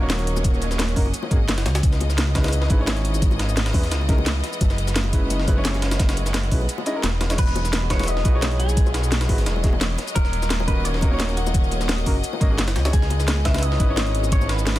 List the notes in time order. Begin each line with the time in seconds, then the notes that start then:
Already playing: D#1 F#3 A#3 C#4 D#5
0.00 A#3 C#4 D#4 F#4 C#5
0.10 snare, closed hi-hat, cabasa
0.19 closed hi-hat, high bongo
0.27 closed hi-hat
0.36 high bongo, cabasa
0.44 kick, closed hi-hat, cabasa
0.54 cabasa
0.62 closed hi-hat, high bongo, cabasa
0.71 snare, cabasa
0.79 snare, closed hi-hat, high bongo, cabasa
0.88 closed hi-hat
0.96 F#1 A#3 C#4 D#4 F#4 A#4, kick, closed hi-hat, open hi-hat
1.06 high bongo
1.14 closed hi-hat, cabasa
1.23 high bongo
1.31 G#1 A#3 C#4 D#4 F#4 G#4, kick, closed hi-hat, cabasa
1.48 F#1, snare, closed hi-hat, high bongo, cabasa
1.58 snare, closed hi-hat
1.66 C#2 E3 G#3 B3, snare, closed hi-hat, high bongo
1.75 snare, closed hi-hat, cabasa
1.83 C#2, kick, closed hi-hat, high bongo, cabasa
1.93 snare, cabasa
2.00 closed hi-hat, high bongo
2.10 snare, cabasa
2.18 snare, closed hi-hat, cabasa
2.27 high bongo
2.35 G#3 C#4 D#4 E4 B4, kick, snare, closed hi-hat
2.44 snare, closed hi-hat, high bongo
2.48 snare, closed hi-hat
2.52 closed hi-hat, cabasa
2.62 snare
2.69 G#1 G#3 C#4 D#4 E4 B4, kick, closed hi-hat, high bongo, cabasa
2.78 G#3 C#4 D#4 E4 C#5
2.87 snare, closed hi-hat, high bongo, cabasa
2.97 closed hi-hat
3.05 closed hi-hat
3.14 high bongo, cabasa
3.22 kick, closed hi-hat, cabasa
3.31 high bongo, cabasa
3.39 snare, closed hi-hat
3.49 cabasa
3.57 snare, closed hi-hat, high bongo, cabasa
3.66 snare, closed hi-hat
3.73 E2 G#3 C#4 D#4 E4 B4, kick, open hi-hat, high bongo
3.83 snare, closed hi-hat
3.92 C#2, snare, closed hi-hat, cabasa
4.01 high bongo
4.08 G#3 C#4 D#4 E4 A#4, kick, snare, closed hi-hat, cabasa
4.18 high bongo
4.26 snare, closed hi-hat, cabasa
4.44 snare, closed hi-hat, high bongo
4.53 cabasa
4.61 F#1, kick, closed hi-hat, high bongo, cabasa
4.70 snare, cabasa
4.78 closed hi-hat
4.87 snare, high bongo, cabasa
4.96 snare, closed hi-hat, cabasa
5.04 high bongo
5.12 G#3 C#4 D#4 E4 B4, kick, closed hi-hat
5.30 F#1, closed hi-hat, high bongo, cabasa
5.40 snare
5.47 G#3 C#4 D#4 E4 B4, kick, closed hi-hat, high bongo, cabasa
5.55 G#3 C#4 D#4 E4 C#5
5.65 snare, closed hi-hat, cabasa
5.74 closed hi-hat, high bongo
5.82 snare, closed hi-hat
5.91 snare, closed hi-hat, high bongo, cabasa
5.99 kick, snare, closed hi-hat, cabasa
6.09 snare, closed hi-hat, cabasa
6.17 closed hi-hat, high bongo, cabasa
6.26 snare, cabasa
6.34 snare, closed hi-hat, high bongo, cabasa
6.43 closed hi-hat
6.51 B1 G#3 C#4 D#4 E4 B4, kick, closed hi-hat, open hi-hat, cabasa
6.62 high bongo
6.69 closed hi-hat, cabasa
6.78 high bongo
6.86 G#3 C#4 D#4 E4 D#5, closed hi-hat, cabasa
6.95 G#3 C#4 D#4 E4 A#4
7.03 E1, snare, closed hi-hat, high bongo, cabasa
7.21 snare, closed hi-hat, high bongo
7.30 G#3 C#4 D#4 E4 C#5, snare, closed hi-hat, cabasa
7.38 E1 F#3 B4 D#5, kick, closed hi-hat, crash, high bongo, cabasa
7.47 snare, cabasa
7.55 closed hi-hat, high bongo
7.65 snare, cabasa
7.73 snare, closed hi-hat, cabasa
7.82 high bongo
7.90 G#3 D#4 E4 F#4 B4 C#5, kick, snare, closed hi-hat
7.99 snare, closed hi-hat, high bongo
8.03 snare, closed hi-hat
8.07 D#5, closed hi-hat, cabasa
8.17 snare
8.24 B1 G#3 D#4 E4 F#4 B4, kick, closed hi-hat, high bongo, cabasa
8.33 G#3 D#4 E4 F#4 C#5
8.42 snare, closed hi-hat, high bongo, cabasa
8.51 closed hi-hat
8.60 G#4, closed hi-hat
8.69 high bongo, cabasa
8.77 kick, closed hi-hat, cabasa
8.86 high bongo, cabasa
8.94 snare, closed hi-hat
9.04 cabasa
9.11 snare, closed hi-hat, high bongo, cabasa
9.21 snare, closed hi-hat
9.28 G#1 G#3 D#4 E4 F#4 B4, kick, open hi-hat, high bongo
9.38 snare, closed hi-hat
9.46 E1, snare, closed hi-hat, cabasa
9.56 high bongo
9.63 G#3 D#4 E4 F#4 G#4, kick, snare, closed hi-hat, cabasa
9.73 high bongo
9.81 snare, closed hi-hat, cabasa
9.98 snare, closed hi-hat, high bongo
10.08 cabasa
10.15 D#1 A#3 C#4 A#4, kick, closed hi-hat, high bongo, cabasa
10.25 snare, cabasa
10.33 closed hi-hat
10.42 snare, high bongo, cabasa
10.50 snare, closed hi-hat, cabasa
10.60 high bongo
10.67 A#3 C#4 D#4 F#4 A#4 B4, kick, closed hi-hat
10.85 D#1 C#5, closed hi-hat, high bongo, cabasa
10.94 snare
11.01 A#3 C#4 D#4 F#4 A#4, kick, closed hi-hat, high bongo, cabasa
11.11 A#3 C#4 D#4 F#4 C#5
11.20 snare, closed hi-hat, cabasa
11.29 closed hi-hat, high bongo
11.37 F#4, closed hi-hat
11.47 high bongo, cabasa
11.54 kick, closed hi-hat, cabasa
11.64 cabasa
11.71 closed hi-hat, high bongo, cabasa
11.81 snare, cabasa
11.89 snare, closed hi-hat, high bongo, cabasa
11.98 closed hi-hat
12.06 F#1 A#3 C#4 D#4 F#4 A#4, kick, closed hi-hat, open hi-hat
12.15 high bongo
12.24 closed hi-hat, cabasa
12.33 high bongo
12.40 G#1 A#3 C#4 D#4 F#4 D#5, kick, closed hi-hat, cabasa
12.50 A#3 C#4 D#4 F#4 G#4
12.58 F#1, snare, closed hi-hat, high bongo, cabasa
12.68 snare, closed hi-hat
12.76 C#2 E3 G#3 B3, snare, closed hi-hat, high bongo
12.84 G#3 C#4 D#4 E4 C#5, snare, closed hi-hat, cabasa
12.93 C#2 G#4, kick, closed hi-hat, high bongo, cabasa
13.02 snare, cabasa
13.10 closed hi-hat, high bongo
13.20 snare, cabasa
13.28 snare, closed hi-hat, cabasa
13.37 high bongo
13.44 G#3 C#4 D#4 E4 B4 E5, kick, snare, closed hi-hat
13.54 snare, closed hi-hat, high bongo
13.58 snare, closed hi-hat
13.63 D#5, closed hi-hat, cabasa
13.72 snare
13.79 G#1 G#3 C#4 D#4 E4 B4, kick, closed hi-hat, high bongo, cabasa
13.88 G#3 C#4 D#4 E4 C#5
13.96 snare, closed hi-hat, high bongo, cabasa
14.06 closed hi-hat
14.15 closed hi-hat
14.23 high bongo, cabasa
14.32 C#5, kick, closed hi-hat, cabasa
14.41 high bongo, cabasa
14.49 B4, snare, closed hi-hat
14.59 cabasa
14.66 snare, closed hi-hat, high bongo, cabasa
14.76 snare, closed hi-hat